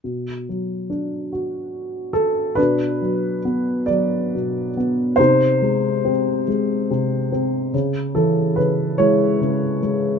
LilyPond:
<<
  \new Staff \with { instrumentName = "Upright piano" } { \time 6/8 \key b \dorian \tempo 4. = 47 << { r2 r8 a'8 | b'4 r8 d''4 r8 | bis'4 r2 | r8 a'8 b'8 cis''4. | } \\ { r2. | d'4. r4. | dis'4. r4. | r4. e'4. | } >> }
  \new Staff \with { instrumentName = "Upright piano" } { \clef bass \time 6/8 \key b \dorian b,8 fis8 d'8 fis'4. | b,8 fis8 b8 fis8 b,8 b8 | bis,8 gis8 bis8 gis8 bis,8 bis8 | cis8 e8 cis8 gis8 cis8 gis8 | }
>>